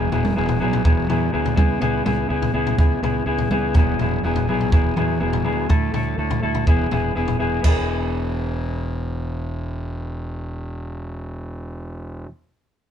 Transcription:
Already playing: clean electric guitar F#3 B3 E4 G#4
0.11 fingered electric bass E1, clean electric guitar F#3 B3 E4 G#4, floor tom
0.25 mid tom
0.35 fingered electric bass E1, clean electric guitar F#3 B3 E4 G#4
0.49 floor tom
0.60 fingered electric bass B1, clean electric guitar F#3 B3 E4 G#4
0.73 floor tom
0.84 fingered electric bass E1, clean electric guitar F#3 B3 E4 G#4, kick
1.08 fingered electric bass E2, clean electric guitar F#3 B3 E4 G#4, floor tom
1.32 fingered electric bass D2, clean electric guitar F#3 B3 E4 G#4
1.46 floor tom
1.56 fingered electric bass C#2, clean electric guitar B3 E4 G#4, kick, mid tom
1.81 fingered electric bass C#2, clean electric guitar B3 E4 G#4, floor tom
2.05 fingered electric bass C#2, clean electric guitar B3 E4 G#4, floor tom, mid tom
2.29 fingered electric bass C#2, clean electric guitar B3 E4 G#4
2.42 floor tom
2.54 fingered electric bass C#2, clean electric guitar B3 E4 G#4
2.67 floor tom
2.78 fingered electric bass C#2, clean electric guitar B3 E4 G#4, kick
3.02 fingered electric bass C#2, clean electric guitar B3 E4 G#4, floor tom
3.26 fingered electric bass C#2, clean electric guitar B3 E4 G#4
3.39 floor tom
3.50 fingered electric bass C#2, clean electric guitar B3 E4 G#4, mid tom
3.74 fingered electric bass E1, clean electric guitar F#3 B3 E4 G#4, kick, floor tom
3.99 fingered electric bass E1, clean electric guitar F#3 B3 E4 G#4, floor tom
4.23 fingered electric bass E1, clean electric guitar F#3 B3 E4 G#4
4.36 floor tom
4.48 fingered electric bass B1, clean electric guitar F#3 B3 E4 G#4
4.61 floor tom
4.72 fingered electric bass E1, clean electric guitar F#3 B3 E4 G#4, kick
4.96 fingered electric bass E2, clean electric guitar F#3 B3 E4 G#4, floor tom
5.20 fingered electric bass E1, clean electric guitar F#3 B3 E4 G#4
5.33 floor tom
5.44 fingered electric bass D2, clean electric guitar F#3 B3 E4 G#4
5.69 fingered electric bass D2, clean electric guitar A3 E4 A4, kick, floor tom
5.93 fingered electric bass D2, clean electric guitar A3 E4 A4, floor tom
6.18 fingered electric bass D2, clean electric guitar A3 E4 A4
6.31 floor tom
6.42 fingered electric bass D2, clean electric guitar A3 E4 A4
6.55 floor tom
6.67 fingered electric bass E1, clean electric guitar B3 E4 G#4, kick
6.91 fingered electric bass E1, clean electric guitar B3 E4 G#4, floor tom
7.15 fingered electric bass E1, clean electric guitar B3 E4 G#4
7.28 floor tom
7.39 fingered electric bass E1, clean electric guitar B3 E4 G#4
7.62 fingered electric bass E1, clean electric guitar B3 E4, kick, crash
7.66 clean electric guitar G#4

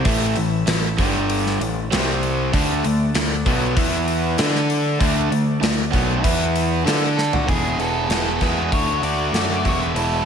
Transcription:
0.05 picked electric bass A1, overdriven electric guitar A2 E3 A3, tonewheel organ A3 E4 A4 E5, kick, open hi-hat
0.36 picked electric bass A1, overdriven electric guitar A2 E3, open hi-hat
0.67 picked electric bass A1, overdriven electric guitar A2 E3, snare, open hi-hat
0.98 picked electric bass G1, overdriven electric guitar G2 D3 G3, tonewheel organ G3 D4 G4 D5, kick, open hi-hat
1.30 open hi-hat
1.46 snare
1.60 picked electric bass A1, overdriven electric guitar A2 E3, open hi-hat
1.90 picked electric bass C2, overdriven electric guitar C3 G3 C4, tonewheel organ G3 C4 G4 C5, snare, open hi-hat
2.23 open hi-hat
2.52 picked electric bass D2, overdriven electric guitar D3 A3 D4, tonewheel organ A3 D4 A4 D5, kick, open hi-hat
2.84 picked electric bass D2, overdriven electric guitar D3 A3, open hi-hat
3.14 picked electric bass D2, overdriven electric guitar D3 A3, snare, open hi-hat
3.46 picked electric bass B1, overdriven electric guitar B2 F#3 B3, kick, open hi-hat
3.75 picked electric bass E2, overdriven electric guitar E3 B3 E4, tonewheel organ B3 E4 B4 E5, kick, open hi-hat
4.08 open hi-hat
4.37 picked electric bass D3, tonewheel organ A3 D4 A4 D5, overdriven electric guitar D4 A4 D5, snare, open hi-hat
4.55 snare
4.70 open hi-hat
5.00 picked electric bass D2, overdriven electric guitar D3 A3 D4, kick, open hi-hat
5.31 picked electric bass D2, overdriven electric guitar D3 A3, open hi-hat
5.62 picked electric bass D2, overdriven electric guitar D3 A3, snare, open hi-hat
5.93 picked electric bass B1, overdriven electric guitar B2 F#3 B3, kick, open hi-hat
6.23 picked electric bass E2, overdriven electric guitar E3 B3 E4, tonewheel organ B3 E4 B4 E5, kick, open hi-hat
6.56 open hi-hat
6.85 picked electric bass D3, tonewheel organ A3 D4 A4 D5, overdriven electric guitar D4 A4 D5, snare, open hi-hat
7.17 lead electric guitar A4, snare
7.33 lead electric guitar F#4, floor tom
7.46 picked electric bass E1, overdriven electric guitar E2 B2 E3 G#3 B3 E4 G#4, lead electric guitar G#4, kick, open hi-hat
7.78 picked electric bass E1, overdriven electric guitar E2 B2 E3 G#3 B3 E4 G#4, lead electric guitar A4, open hi-hat
8.08 picked electric bass E1, overdriven electric guitar E2 B2 E3 G#3 B3 E4 G#4, snare, open hi-hat
8.36 overdriven electric guitar B2, lead electric guitar A4
8.40 overdriven electric guitar E2 E3 G#3 B3 E4 G#4, picked electric bass E2, lead electric guitar B4, kick, snare, open hi-hat
8.72 picked electric bass D2, overdriven electric guitar D3 A3 D4 F#4, lead electric guitar C#5, kick, open hi-hat
9.02 picked electric bass D2, overdriven electric guitar D3 A3 D4 F#4, lead electric guitar D5, open hi-hat
9.33 picked electric bass F#2, overdriven electric guitar D3 A3 D4 F#4, snare, open hi-hat
9.63 picked electric bass E1, overdriven electric guitar E2 B2 E3 G#3 B3 E4, lead electric guitar C#5, kick, open hi-hat
9.82 lead electric guitar B4
9.94 picked electric bass E1, overdriven electric guitar E2 B2 E3 G#3 B3 E4, lead electric guitar A4, open hi-hat

